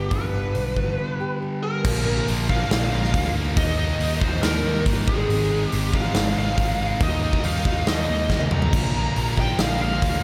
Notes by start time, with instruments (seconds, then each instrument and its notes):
Already playing: picked electric bass G1, distorted electric guitar G2 D3 G3, steel-string acoustic guitar B3 D4 G4, lead electric guitar G4
0.09 picked electric bass G1, steel-string acoustic guitar G2, distorted electric guitar G2 D3, lead electric guitar B4, kick, open hi-hat
0.14 distorted electric guitar G3
0.33 picked electric bass G1, steel-string acoustic guitar B3
0.55 picked electric bass B1, steel-string acoustic guitar G3, open hi-hat
0.76 picked electric bass G1, distorted electric guitar G2 D3 G3, steel-string acoustic guitar D4, kick
0.98 steel-string acoustic guitar B3
1.20 steel-string acoustic guitar G4
1.42 steel-string acoustic guitar D4
1.63 steel-string acoustic guitar B3, lead electric guitar A#4
1.85 picked electric bass A#1, distorted electric guitar A#2 D3 F3 A#3 D4, kick, crash
2.06 distorted electric guitar A#2 F3 A#3 D4
2.28 picked electric bass A#1, distorted electric guitar A#2 D3 F3 A#3 D4, open hi-hat
2.49 distorted electric guitar A#2 F3 A#3 D4, lead electric guitar F5, kick
2.71 picked electric bass A#1, distorted electric guitar A#2 D3 F3 A#3 D4, snare, open hi-hat
2.92 picked electric bass A#1, distorted electric guitar A#2 F3 A#3 D4, lead electric guitar F5
3.04 snare
3.14 picked electric bass D2, distorted electric guitar A#2 D3 F3 A#3 D4, kick, open hi-hat
3.36 distorted electric guitar A#2 F3 A#3
3.57 picked electric bass D#2, distorted electric guitar D#3 G3 A#3 D#4, lead electric guitar D#5, kick, open hi-hat
3.78 distorted electric guitar D#3 G3 A#3 D#4, lead electric guitar D#5
4.00 picked electric bass D#2, distorted electric guitar D#3 G3 A#3 D#4, open hi-hat
4.20 picked electric bass D#2, distorted electric guitar D#3 G3 A#3 D#4, lead electric guitar C5, kick
4.42 picked electric bass D#2, distorted electric guitar D#3 G3 A#3 D#4, lead electric guitar A#4, snare, open hi-hat
4.64 picked electric bass D#2, distorted electric guitar D#3 G3 A#3 D#4
4.86 picked electric bass G1, distorted electric guitar D#3 G3 A#3 D#4, kick, open hi-hat
5.08 picked electric bass G#1, distorted electric guitar G#2 D#3 G#3 C4 D#4, lead electric guitar G#4, kick
5.29 picked electric bass G#1, distorted electric guitar G#2 D#3 G#3 C4 D#4, open hi-hat
5.51 distorted electric guitar G#2 D#3 G#3 C4 D#4
5.68 lead electric guitar G4
5.72 picked electric bass G#1, distorted electric guitar G#2 D#3 G#3 C4 D#4, open hi-hat
5.93 distorted electric guitar G#2 D#3 G#3 C4 D#4, lead electric guitar F5, kick
6.14 picked electric bass G#1, distorted electric guitar G#2 D#3 G#3 C4 D#4, snare, open hi-hat
6.36 picked electric bass G#1, distorted electric guitar G#2 D#3 G#3 C4 D#4, lead electric guitar F5
6.57 picked electric bass G#1, distorted electric guitar G#2 D#3 G#3 C4 D#4, kick, open hi-hat
6.80 distorted electric guitar G#2 D#3 G#3
7.00 picked electric bass D#2, distorted electric guitar D#3 G3 A#3 D#4, lead electric guitar D#5, kick, open hi-hat
7.22 distorted electric guitar D#3 G3 A#3 D#4
7.33 kick
7.44 picked electric bass D#2, distorted electric guitar D#3 G3 A#3 D#4, lead electric guitar F5, open hi-hat
7.65 picked electric bass D#2, distorted electric guitar D#3 G3 A#3 D#4, kick
7.86 picked electric bass D#2, distorted electric guitar D#3 G3 A#3 D#4, lead electric guitar D#5, snare, open hi-hat
8.09 picked electric bass D#2, distorted electric guitar D#3 G3 A#3 D#4
8.30 picked electric bass D#2, distorted electric guitar D#3 G3 A#3 D#4, kick, snare
8.40 high tom
8.51 picked electric bass D#2, distorted electric guitar D#3 A#3 D#4, lead electric guitar A#5, mid tom
8.62 floor tom
8.73 picked electric bass A#1, distorted electric guitar A#2 D3 F3 A#3 D4, kick, crash
8.95 distorted electric guitar A#2 F3 A#3 D4
9.16 picked electric bass A#1, distorted electric guitar A#2 D3 F3 A#3 D4, open hi-hat
9.37 distorted electric guitar A#2 F3 A#3 D4, lead electric guitar G5, kick
9.59 picked electric bass A#1, distorted electric guitar A#2 D3 F3 A#3 D4, lead electric guitar F5, snare, open hi-hat
9.80 picked electric bass A#1, distorted electric guitar A#2 F3 A#3 D4, lead electric guitar F5
10.02 picked electric bass D2, distorted electric guitar A#2 D3 F3 A#3 D4, kick, open hi-hat